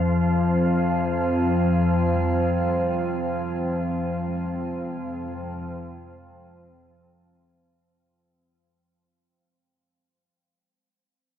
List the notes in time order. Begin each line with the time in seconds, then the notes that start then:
Already playing: F2 F3 C4 C5 F5
2.15 G3
4.27 G#3